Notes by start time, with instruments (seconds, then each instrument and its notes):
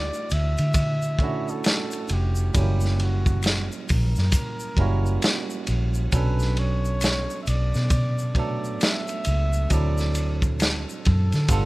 Already playing: tine electric piano A3 D4 E4 F#4, muted trumpet D5
0.14 shaker
0.30 fingered electric bass D2, muted trumpet E5, ride, shaker
0.58 fingered electric bass D3, ride, shaker
0.74 kick, ride, shaker
1.02 shaker
1.19 tine electric piano A3 C#4 D4, kick, ride
1.23 tine electric piano E4 F#4
1.48 muted trumpet A4, shaker
1.64 finger snap, snare, ride, shaker
1.91 ride, shaker
2.08 fingered electric bass F1, ride, shaker
2.13 muted trumpet G4
2.35 shaker
2.54 fingered electric bass F#1, tine electric piano F#3 G3 A3 C#4 E4, muted trumpet G4, kick, ride, shaker
2.61 tine electric piano A#3
2.81 shaker
2.85 snare
3.00 muted trumpet F#4, ride
3.26 kick, shaker
3.43 finger snap, snare, ride, shaker
3.72 shaker
3.89 fingered electric bass A#1, muted trumpet A#4, kick, open hi-hat, ride, shaker
4.16 fingered electric bass F#2, snare, shaker
4.32 kick, hi-hat pedal, ride, shaker
4.60 shaker
4.77 fingered electric bass F#1, tine electric piano G3 A#3 C#4 E4, kick, ride
4.81 tine electric piano F#4
5.06 shaker
5.22 finger snap, snare, ride, shaker
5.50 shaker
5.67 fingered electric bass A#1, ride, shaker
5.94 shaker
6.12 fingered electric bass B1, tine electric piano F#3 B3 C#4 D4 A4, muted trumpet B4, kick, ride, shaker
6.39 snare, shaker
6.57 muted trumpet C#5, ride
6.85 shaker
7.01 finger snap, snare, ride, shaker
7.30 shaker
7.43 muted trumpet E5
7.47 fingered electric bass B1, muted trumpet D5, ride, shaker
7.74 fingered electric bass B2, snare, shaker
7.90 kick, ride, shaker
8.19 shaker
8.35 tine electric piano F#3 A3 B3 D4, muted trumpet D5, kick, ride
8.39 tine electric piano A4
8.65 shaker
8.81 muted trumpet E5, finger snap, snare, ride, shaker
9.08 ride, shaker
9.25 fingered electric bass C#2, ride, shaker
9.53 shaker
9.70 fingered electric bass D2, tine electric piano F#3 C4 D4 E4 A4, muted trumpet D5, kick, ride, shaker
9.98 snare, shaker
10.15 ride, shaker
10.42 kick, shaker
10.60 muted trumpet A4, finger snap, snare, ride, shaker
10.89 shaker
11.05 fingered electric bass F#2, kick, ride
11.32 fingered electric bass D3, snare, ride, shaker
11.48 fingered electric bass G1, tine electric piano G3 B3 D4 F4 A4, kick, ride, shaker